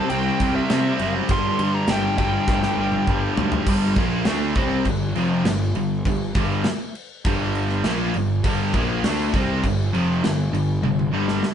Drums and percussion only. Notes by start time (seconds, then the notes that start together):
0.10 ride
0.40 kick, ride
0.70 snare, ride
0.99 ride
1.29 kick, ride
1.59 ride
1.88 snare, ride
2.18 kick, ride
2.47 kick, snare
2.63 snare
2.92 mid tom
3.07 kick
3.37 floor tom
3.52 floor tom
3.66 kick, crash
3.96 kick, crash
4.25 snare, crash
4.55 kick, crash
4.85 kick, crash
5.16 crash
5.45 snare, crash
5.75 crash
6.05 kick, crash
6.35 kick, crash
6.64 snare, crash
6.95 crash
7.25 kick, crash
7.55 crash
7.70 snare
7.84 snare, crash
8.14 crash
8.44 kick, crash
8.74 kick, crash
9.04 snare, crash
9.34 kick, crash
9.64 kick, crash
9.95 crash
10.24 snare, crash
10.54 crash
10.84 high tom
10.99 high tom
11.28 snare
11.43 snare